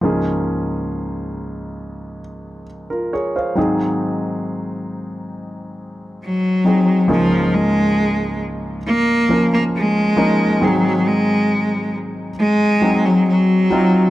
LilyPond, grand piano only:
<<
  \new Staff \with { instrumentName = "Grand piano" } { \time 4/4 \key des \major \tempo 4 = 68 << { r2. r16 <f' bes'>16 <aes' des''>16 <c'' f''>16~ | <c'' f''>16 r2. r8. | r1 | r1 | } \\ { <f bes des' aes'>2. r4 | <ges c' ees' aes'>2.~ <ges c' ees' aes'>8 <ges c' ees' aes'>8 | <f bes des' aes'>2 r8 <f bes des' bes'>4 <f bes des' ees'>8 | <ges c' ees' aes'>2 r8 <ges c' ees' aes'>4 <ges c' ees' f'>8 | } >> }
  \new Staff \with { instrumentName = "Grand piano" } { \clef bass \time 4/4 \key des \major <des, aes,>1 | <aes, ees>1 | <des, aes,>1 | <aes, ees>1 | }
>>